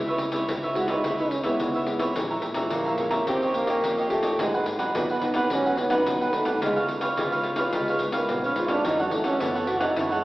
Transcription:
Already playing: C#2 C#3 G#3 B3 E4
0.07 B4 C#5 E5, pandeiro
0.18 C#3, muted cavaquinho stroke, pandeiro
0.32 G#3 B3 E4 B4 C#5 E5, pandeiro
0.48 C#2 G#2 E4 B4 C#5 E5, pandeiro
0.63 B4 C#5 E5, pandeiro
0.75 G#3 B3 E4 F#4 B4 C#5 E5, pandeiro
0.88 D#4 B4 C#5 E5, pandeiro
1.04 C#2 C#3 G#3 B3 E4 B4 C#5 E5, pandeiro
1.19 D#4 B4 C#5 E5, pandeiro
1.31 C#4, muted cavaquinho stroke, pandeiro
1.44 G#3 B3 E4 B4 C#5 E5, pandeiro
1.60 C#2 G#2, pandeiro
1.74 B4 C#5 E5, pandeiro
1.87 G#3 B3 E4, pandeiro
1.99 B4 C#5 E5, pandeiro
2.16 A#1 A#2 E3 G#3 C#4 G#4 C#5 E5 A#5, pandeiro
2.31 C#5 E5 A#5, pandeiro
2.42 A#2, muted cavaquinho stroke, pandeiro
2.54 E3 G#3 C#4 C#5 E5 A#5, pandeiro
2.70 A#1 A#2 A#3 G#4 C#5 E5 A#5, pandeiro
2.86 C#5 E5 A#5, pandeiro
2.98 E3 G#3 C#4 G#4 C#5 E5 A#5, pandeiro
3.11 C#5 E5 A#5, pandeiro
3.27 D#2 D#3 A#3 C4 C#4 D#4 G4 C#5 D#5, pandeiro
3.42 G4 C#5 D#5, pandeiro
3.54 A#3, muted cavaquinho stroke, pandeiro
3.67 A#3 C#4 G4 C#5 D#5, pandeiro
3.83 A#1 A#2, pandeiro
3.98 G4 C#5 D#5, pandeiro
4.10 A3 A#3 C#4 G4, pandeiro
4.23 G4 C#5 D#5, pandeiro
4.39 G#1 G#2 F#3 G#3 B3 D#4 F#4 G#4 B4 F#5, pandeiro
4.54 G#4 B4 F#5, pandeiro
4.66 G#2, muted cavaquinho stroke, pandeiro
4.79 F#3 B3 D#4 G#4 B4 F#5, pandeiro
4.95 G#1 D#3 B3 F#4 G#4 B4 F#5, pandeiro
5.09 G#4 B4 F#5, pandeiro
5.21 F#3 B3 D#4 F#4 G#4 B4 F#5, pandeiro
5.34 G#4 B4 F#5, pandeiro
5.50 G#1 G#2 F#3 B3 C#4 D#4 F#4 G#4 B4 F#5, pandeiro
5.66 G#4 B4 F#5, pandeiro
5.77 B3, muted cavaquinho stroke, pandeiro
5.90 F#3 B3 D#4 G#4 B4 F#5, pandeiro
6.06 C2 D#3, pandeiro
6.21 G#4 B4 F#5, pandeiro
6.33 F#3 A3 B3 D#4, pandeiro
6.45 G#4 B4 F#5, pandeiro
6.61 C#2 C#3 G#3 B3 F4 B4 C#5 F5, pandeiro
6.76 B4 C#5 F5, pandeiro
6.88 C#3, muted cavaquinho stroke, pandeiro
7.01 B4 C#5 F5, pandeiro
7.17 C#2 G#2 G#3 B3 F4 B4 C#5 F5, pandeiro
7.32 B4 C#5 F5, pandeiro
7.43 F4 B4 C#5 F5, pandeiro
7.56 G#3 B3 F4 B4 C#5 F5, pandeiro
7.73 C#2 C#3 G#3 F4 B4 C#5 F5, pandeiro
7.88 B4 C#5 F5, pandeiro
7.99 G#3 B3 F4, muted cavaquinho stroke, pandeiro
8.12 A#3 B4 C#5 F5, pandeiro
8.29 B1 G#2 B3, pandeiro
8.44 C#4 B4 C#5 F5, pandeiro
8.56 G#1 G#3 B3 F4, pandeiro
8.68 D4 B4 C#5 F5, pandeiro
8.84 F#2 E3 A3 C#4 D#4 E4 A4 C#5 F#5, pandeiro
8.99 F#3 A4 C#5 F#5, pandeiro
9.11 E3 F#3 A3 C#4, muted cavaquinho stroke, pandeiro
9.24 C#4 A4 C#5 F#5, pandeiro
9.40 F#2 C#3 E3 A3 B3 C#4 E4 A4 C#5 F#5, pandeiro
9.55 A4 C#5 F#5, pandeiro
9.67 E4 F#4 A4 C#5 F#5, pandeiro
9.80 E3 A3 C#4 D#4 A4 C#5 F#5, pandeiro
9.96 F#2 E4 A4 C#5 F#5, pandeiro
10.11 G#3 A4 C#5 F#5, pandeiro

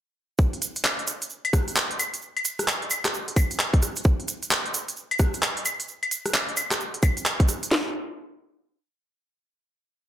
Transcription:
0.38 kick, shaker
0.53 closed hi-hat
0.62 closed hi-hat, shaker
0.76 closed hi-hat, shaker
0.84 clap, shaker
0.99 closed hi-hat
1.07 closed hi-hat, shaker
1.22 closed hi-hat, shaker
1.30 shaker
1.45 closed hi-hat, claves
1.53 kick, cross-stick, closed hi-hat, shaker
1.68 closed hi-hat, shaker
1.76 clap, shaker
1.91 closed hi-hat
1.99 closed hi-hat, claves, shaker
2.14 closed hi-hat, shaker
2.22 shaker
2.37 closed hi-hat, claves
2.45 closed hi-hat, shaker
2.59 cross-stick, closed hi-hat, shaker
2.68 clap, shaker
2.82 closed hi-hat
2.90 closed hi-hat, claves, shaker
3.04 cross-stick, clap, closed hi-hat, shaker
3.14 shaker
3.28 closed hi-hat
3.36 kick, closed hi-hat, claves, shaker
3.51 closed hi-hat, shaker
3.59 clap, shaker
3.74 kick, closed hi-hat
3.82 cross-stick, closed hi-hat, shaker
3.96 closed hi-hat, shaker
4.04 kick, shaker
4.20 closed hi-hat
4.28 closed hi-hat, shaker
4.43 closed hi-hat, shaker
4.51 clap, shaker
4.66 closed hi-hat
4.74 closed hi-hat, shaker
4.88 closed hi-hat, shaker
4.97 shaker
5.11 closed hi-hat, claves
5.19 kick, cross-stick, closed hi-hat, shaker
5.34 closed hi-hat, shaker
5.43 clap, shaker
5.57 closed hi-hat
5.65 closed hi-hat, claves, shaker
5.80 closed hi-hat, shaker
5.88 shaker
6.03 closed hi-hat, claves
6.11 closed hi-hat, shaker
6.26 cross-stick, closed hi-hat, shaker
6.34 clap, shaker
6.49 closed hi-hat
6.57 closed hi-hat, claves, shaker
6.71 cross-stick, clap, closed hi-hat, shaker
6.80 shaker
6.94 closed hi-hat
7.03 kick, closed hi-hat, claves, shaker
7.17 closed hi-hat, shaker
7.25 clap, shaker
7.40 kick, closed hi-hat
7.48 cross-stick, closed hi-hat, shaker
7.63 closed hi-hat, shaker
7.71 snare

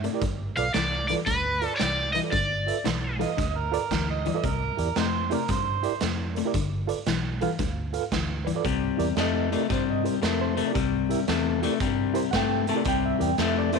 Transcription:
Already playing: E5
0.04 C3 A3 A#4 D5, closed hi-hat
0.13 E4 G4 A#4 D5
0.21 G1 G2 D3, kick, closed hi-hat
0.57 B1 F4 A4 B4 D5 F5, closed hi-hat
0.74 C2 G2 E3 D5, snare, closed hi-hat
1.08 G2 E3 F4 A4 B4 D5, closed hi-hat
1.26 D2 G2 D3 B4, kick, closed hi-hat
1.62 F4 A4 B4 D5, closed hi-hat
1.76 C#5 D5, snare, closed hi-hat
1.80 C2 G2 E3
2.13 G2 E3 B4 D#5 E5, closed hi-hat
2.23 F4 A4 B4 D5
2.32 G1 G2 D3 D5, kick, closed hi-hat
2.66 F4 A4 B4 E5, closed hi-hat
2.84 B1 G2 E3, snare, closed hi-hat
3.19 G2 E3 F4 A4 B4 D#5 F5, closed hi-hat
3.37 D2 G2 D3, kick, snare, closed hi-hat
3.58 A#4
3.72 F4 A4 B4 D5, closed hi-hat
3.91 D2 G2 E3, kick, snare, closed hi-hat
4.10 D#5
4.25 G2 E3 B4 D5, closed hi-hat
4.35 F4 A4 B4 D5
4.44 C2 C3 G3 A#4, kick, closed hi-hat
4.77 E2 E4 G4 A#4 D5, closed hi-hat
4.96 F2 C3 A3 D#4 G4 C5, snare, closed hi-hat
5.30 C3 A3 E4 G4 A#4 D5, closed hi-hat
5.48 G2 C3 G3 C5, kick, snare, closed hi-hat
5.83 E4 G4 A#4 D5, closed hi-hat
6.01 F2 C3 A3, snare, closed hi-hat
6.35 C3 A3 A#4 D5, closed hi-hat
6.45 E4 G4 A#4 D5
6.54 G1 G2 D3, kick, closed hi-hat
6.87 F4 A4 B4 D5, closed hi-hat
7.06 B1 G2 E3, snare, closed hi-hat
7.41 G2 E3 F4 A4 B4 F5, closed hi-hat
7.59 D2 G2 D3, kick, snare, closed hi-hat
7.93 F4 A4 B4 F5, closed hi-hat
8.12 D2 G2 E3, kick, snare, closed hi-hat
8.45 G2 E3 B4 D5, closed hi-hat
8.55 F4 A4 B4 D5
8.65 C2 C3 G3, kick, closed hi-hat
8.97 E2 E4 G4 A#4 D5, closed hi-hat
9.16 F2 C3 A3 D5, snare, closed hi-hat
9.20 D#5
9.51 C3 A3 E4 G4 A#4 D5, closed hi-hat
9.69 G2 C3 G3 C5, kick, snare, closed hi-hat
9.90 D#5
10.03 E4 G4 A#4 C5, closed hi-hat
10.22 F2 C3 A3 A#4, snare, closed hi-hat
10.41 C5
10.57 C3 A3 A#4 E5, closed hi-hat
10.66 E4 G4 A#4 D5
10.74 C2 C3 G3, kick, closed hi-hat
11.09 E4 G4 A#4 E5, closed hi-hat
11.28 E2 C3 A3, snare, closed hi-hat
11.62 C3 A3 E4 G4 A#4 D5, closed hi-hat
11.80 G2 C3 G3, kick, closed hi-hat
12.14 E4 G4 A#4 C5, closed hi-hat
12.31 G2 C3 A3 F#5, kick, snare, closed hi-hat
12.36 G5
12.67 C3 A3 A#4 E5 A5, closed hi-hat
12.75 E4 G4 A#4 D5
12.85 C2 C3 G3 G5, kick, closed hi-hat
13.06 E5
13.19 E2 E4 G4 A#4 D5 G5, closed hi-hat
13.38 F2 C3 A3 E5, snare, closed hi-hat
13.58 D5
13.72 C3 A3 E4 G4 A#4 C5 E5, closed hi-hat

